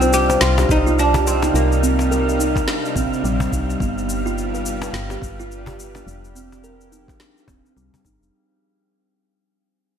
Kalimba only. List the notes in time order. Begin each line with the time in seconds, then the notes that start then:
0.02 C5
0.30 C5
0.59 G4
0.86 F4
1.15 G4
1.43 D#4
1.83 C4
2.11 A#4
2.39 D#4
2.68 D4
2.96 C4
3.24 G3
3.52 D#4
3.81 B3
4.26 F4
4.54 B4
4.83 B4
5.11 G4
5.39 F4
5.68 G4
5.96 D4
6.35 C4
6.64 A#4
6.92 D#4
7.21 D4
7.48 C4
7.77 G3
8.05 D#4